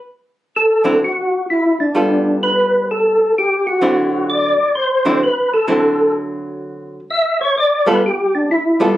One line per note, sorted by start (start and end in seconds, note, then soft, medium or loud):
0.56 0.99 A4 medium
0.84 0.99 D3 medium
0.84 0.99 F#3 medium
0.84 0.99 C4 medium
0.84 0.99 E4 medium
1.04 1.46 F#4 medium
1.50 1.79 E4 medium
1.80 2.38 D4 medium
1.95 3.25 G3 medium
1.95 3.25 B3 medium
1.95 3.26 F4 medium
1.95 3.26 A4 medium
2.43 2.86 B4 medium
2.91 3.33 A4 medium
3.38 3.66 G4 medium
3.67 4.25 F#4 medium
3.81 4.53 D3 medium
3.81 4.53 F#3 medium
3.81 4.53 C4 medium
3.81 4.53 E4 medium
4.30 4.73 D5 loud
4.75 5.19 C5 medium
5.05 5.20 D3 medium
5.05 5.20 F#3 medium
5.05 5.20 C4 medium
5.05 5.20 E4 medium
5.23 5.52 B4 medium
5.54 6.12 A4 medium
5.68 6.99 D3 medium
5.68 6.99 F#3 medium
5.68 6.99 C4 medium
5.68 6.99 E4 medium
7.10 7.40 E5 medium
7.41 7.56 C#5 medium
7.58 7.87 D5 loud
7.86 8.01 G3 medium
7.86 8.01 B3 medium
7.86 8.01 F4 medium
7.86 8.01 A4 medium
7.86 8.03 B4 medium
8.06 8.34 G4 medium
8.35 8.50 D4 medium
8.51 8.97 E4 medium
8.80 8.94 G3 medium
8.80 8.95 B3 medium
8.80 8.95 F4 medium
8.80 8.95 A4 medium